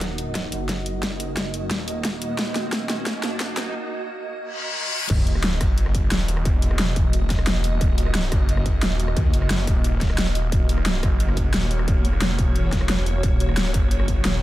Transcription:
Already playing: detuned saw bass D#1, synth drone A#3 F#4 D#5, ambient pad D#4 A#4 F#5, riser
0.01 kick, snare, closed hi-hat
0.18 closed hi-hat
0.35 kick, snare, closed hi-hat
0.52 detuned saw bass F#1, closed hi-hat
0.69 kick, snare, closed hi-hat
0.86 closed hi-hat
1.03 kick, snare, closed hi-hat
1.20 closed hi-hat
1.37 detuned saw bass F#1, kick, snare, closed hi-hat
1.54 closed hi-hat
1.71 detuned saw bass D#1, kick, snare, closed hi-hat
1.88 closed hi-hat
2.05 kick, snare, closed hi-hat
2.22 closed hi-hat
2.39 detuned saw bass D#1, kick, snare, closed hi-hat
2.56 snare, closed hi-hat
2.73 kick, snare, closed hi-hat
2.90 snare, closed hi-hat
2.98 detuned saw bass D1
3.06 kick, snare, closed hi-hat
3.23 detuned saw bass F#1, snare, closed hi-hat
3.40 kick, snare, closed hi-hat
3.57 snare, closed hi-hat
4.42 reverse cymbal
5.10 detuned saw bass D#1, synth drone A#3 F#4 D#5, kick, closed hi-hat, crash, sub drop
5.27 closed hi-hat
5.35 cross-stick
5.44 snare, closed hi-hat
5.61 detuned saw bass F#1, kick, cross-stick, closed hi-hat
5.78 closed hi-hat
5.86 cross-stick
5.95 kick, closed hi-hat
6.12 detuned saw bass D#1, snare, closed hi-hat
6.28 closed hi-hat
6.37 cross-stick
6.45 detuned saw bass E1, kick, closed hi-hat
6.62 closed hi-hat
6.71 cross-stick
6.79 snare, closed hi-hat
6.96 kick, closed hi-hat
7.13 closed hi-hat
7.30 kick, snare, closed hi-hat
7.39 cross-stick
7.47 snare, closed hi-hat
7.64 closed hi-hat
7.81 detuned saw bass D#1, kick, closed hi-hat
7.98 closed hi-hat
8.06 cross-stick
8.15 snare, closed hi-hat
8.32 detuned saw bass F#1, kick, cross-stick, closed hi-hat
8.49 closed hi-hat
8.57 cross-stick
8.66 kick, closed hi-hat
8.83 detuned saw bass D#1, snare, closed hi-hat
9.00 closed hi-hat
9.08 cross-stick
9.17 detuned saw bass D#2, kick, closed hi-hat
9.33 detuned saw bass F#1, closed hi-hat
9.42 cross-stick
9.50 snare, closed hi-hat
9.67 detuned saw bass D#1, kick, closed hi-hat
9.84 closed hi-hat
10.01 kick, snare, closed hi-hat
10.10 cross-stick
10.18 detuned saw bass D#1, snare, closed hi-hat
10.35 closed hi-hat
10.52 detuned saw bass D#1, synth drone C#5, kick, closed hi-hat
10.69 closed hi-hat
10.78 cross-stick
10.86 snare, closed hi-hat
11.03 detuned saw bass F#1, kick, cross-stick, closed hi-hat
11.20 closed hi-hat
11.29 cross-stick
11.37 kick, closed hi-hat
11.54 detuned saw bass D#1, snare, closed hi-hat
11.71 closed hi-hat
11.79 cross-stick
11.88 detuned saw bass E1, kick, closed hi-hat
12.05 closed hi-hat
12.13 cross-stick
12.22 snare, closed hi-hat
12.39 kick, closed hi-hat
12.56 closed hi-hat
12.73 kick, snare, closed hi-hat
12.81 cross-stick
12.89 snare, closed hi-hat
13.06 closed hi-hat
13.23 detuned saw bass D#1, kick, closed hi-hat
13.40 closed hi-hat
13.49 cross-stick
13.57 snare, closed hi-hat
13.74 detuned saw bass F#1, kick, closed hi-hat
13.91 closed hi-hat
14.00 cross-stick
14.08 kick, closed hi-hat
14.25 detuned saw bass D#1, snare, closed hi-hat

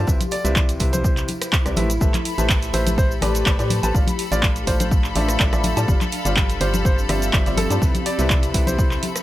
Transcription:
Already playing: ambient pad G4
0.07 fm bass C2, upright piano C3 E4 G4 B4 C5 E5, ambient pad E4, kick, tambourine, shaker
0.20 closed hi-hat, tambourine, high conga, shaker
0.31 grand piano D5, open hi-hat, tambourine
0.44 fm bass C2, upright piano C3 E4 G4 B4 C5 E5, ambient pad B5, closed hi-hat, tambourine, shaker
0.55 kick, clap, tambourine, high conga, shaker
0.69 closed hi-hat, tambourine, shaker
0.80 fm bass C2, upright piano C3 E4 G4 B4 C5 E5, kick, open hi-hat, tambourine
0.92 grand piano C5, closed hi-hat, tambourine, high conga, shaker
1.04 kick, tambourine, shaker
1.17 clap, closed hi-hat, tambourine, shaker
1.28 open hi-hat, tambourine, high conga
1.42 cross-stick, closed hi-hat, tambourine, shaker
1.53 kick, clap, tambourine, shaker
1.65 fm bass C2, upright piano C3 E4 G4 B4 C5 D5, cross-stick, closed hi-hat, tambourine, shaker
1.76 fm bass A1, upright piano A3 E4 G4 B4 C5 E5, open hi-hat, tambourine, high conga
1.90 closed hi-hat, tambourine, shaker
2.01 fm bass A1, upright piano A3 G4 A4 B4 C5 E5, ambient pad G4, string section A4 B5, kick, tambourine, shaker
2.14 clap, closed hi-hat, high conga, shaker
2.25 open hi-hat, tambourine
2.38 fm bass A1, upright piano A3 G4 A4 B4 C5 E5, closed hi-hat, tambourine, shaker
2.49 kick, clap, tambourine, high conga, shaker
2.62 closed hi-hat, tambourine, shaker
2.73 fm bass A1, upright piano A3 G4 A4 B4 C5 E5, grand piano C5, open hi-hat, tambourine
2.87 closed hi-hat, tambourine, high conga, shaker
2.98 grand piano C5, kick, tambourine, shaker
3.11 tambourine, shaker
3.21 fm bass A1, upright piano A3 G4 A4 B4 C5 D5, cross-stick, open hi-hat, tambourine, high conga
3.34 closed hi-hat, tambourine, shaker
3.46 fm bass A1, upright piano A3 G4 A4 B4 C5 D5, kick, clap, tambourine, shaker
3.59 fm bass A2, upright piano A3 G4 A4 B4 C5 D5, closed hi-hat, tambourine, shaker
3.70 open hi-hat, tambourine, high conga
3.83 fm bass A1, upright piano G4 A4 B4 C5 A5, closed hi-hat, tambourine, shaker
3.95 fm bass A1, upright piano A3 F4 A4 C5 D5 F5, ambient pad D4, kick, tambourine, shaker
4.07 closed hi-hat, tambourine, high conga, shaker
4.19 open hi-hat, tambourine
4.31 fm bass A1, upright piano A3 F4 A4 C5 D5 F5, grand piano D5, closed hi-hat, tambourine, shaker
4.40 ambient pad F5, kick, clap, tambourine, high conga, shaker
4.56 closed hi-hat, tambourine, shaker
4.67 fm bass A1, upright piano A3 F4 A4 C5 D5 F5, grand piano C5, kick, open hi-hat, tambourine
4.80 grand piano C5, closed hi-hat, tambourine, high conga, shaker
4.91 kick, tambourine, shaker
5.04 clap, tambourine, shaker
5.15 fm bass A1, upright piano A3 F4 A4 C5 D5 E5, open hi-hat, tambourine, high conga
5.29 cross-stick, closed hi-hat, tambourine, shaker
5.40 fm bass A1, upright piano A3 F4 A4 C5 D5 E5, kick, clap, tambourine, shaker
5.52 fm bass A1, upright piano A3 F4 A4 C5 D5 E5, cross-stick, closed hi-hat, tambourine, shaker
5.64 open hi-hat, tambourine, high conga
5.76 fm bass A2, upright piano G3 F4 A4 C5 D5 A5, closed hi-hat, tambourine, shaker
5.88 fm bass G1, upright piano G3 F4 G4 C5 D5 F5, ambient pad C4, kick, tambourine, shaker
6.01 clap, closed hi-hat, high conga, shaker
6.12 open hi-hat, tambourine
6.25 fm bass G1, upright piano G3 F4 G4 C5 D5 F5, ambient pad G4, closed hi-hat, tambourine, shaker
6.36 kick, clap, tambourine, high conga, shaker
6.50 closed hi-hat, tambourine, shaker
6.61 fm bass G1, upright piano G3 F4 G4 C5 D5 F5, grand piano C5, open hi-hat, tambourine
6.74 closed hi-hat, tambourine, high conga, shaker
6.85 grand piano C5, kick, tambourine, shaker
6.99 tambourine, shaker
7.09 fm bass G1, upright piano G3 F4 G4 C5 D5 E5, cross-stick, open hi-hat, tambourine, high conga
7.22 closed hi-hat, tambourine, shaker
7.33 fm bass G1, upright piano G3 F4 G4 C5 D5 E5, kick, clap, tambourine, shaker
7.46 fm bass G1, upright piano G3 F4 G4 C5 D5 E5, closed hi-hat, tambourine, shaker
7.57 grand piano A4, open hi-hat, tambourine, high conga
7.70 fm bass G2, upright piano F4 G4 C5 D5 A5, closed hi-hat, tambourine, shaker
7.82 fm bass C2, upright piano C3 E4 G4 B4 C5 E5, kick, tambourine, shaker
7.93 ambient pad E5, closed hi-hat, tambourine, high conga, shaker
8.06 grand piano D5, open hi-hat, tambourine
8.18 fm bass C2, upright piano C3 E4 G4 B4 C5 E5, ambient pad B5, closed hi-hat, tambourine, shaker
8.30 kick, clap, tambourine, high conga, shaker
8.43 closed hi-hat, tambourine, shaker
8.54 fm bass C2, upright piano C3 E4 G4 B4 C5 E5, kick, open hi-hat, tambourine
8.67 grand piano C5, closed hi-hat, tambourine, high conga, shaker
8.79 kick, tambourine, shaker
8.91 clap, tambourine, shaker
9.03 open hi-hat, tambourine, high conga
9.16 cross-stick, closed hi-hat, tambourine, shaker

